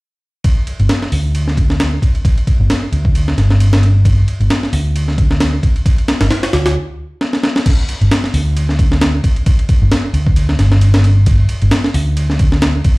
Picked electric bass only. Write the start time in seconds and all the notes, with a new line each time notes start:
0.79 G1
1.12 D2
2.60 G1
2.92 D2
3.38 G1
4.40 G1
4.73 D2
6.21 G1
6.53 D2
8.01 G1
8.34 D2
9.82 G1
10.14 D2
10.59 G1
11.62 G1
11.94 D2